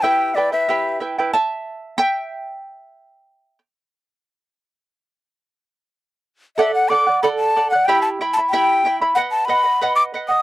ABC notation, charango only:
X:1
M:2/4
L:1/16
Q:1/4=92
K:Em
V:1 name="Charango"
[EGBeg]2 [EBeg] [EBg] [EGBeg]2 [EBeg] [EBg] | [ea]4 [eg]4- | [eg]6 z2 | z8 |
z8 | [Adf]2 [Adf] [df] [Adf]2 [Adf] [df] | [EGegb]2 [Eegb] [Eeb] [EGegb]2 [Eegb] [Eeb] | [B^df]2 [Bdf] [df] [Bdf]2 [Bdf] [df] |]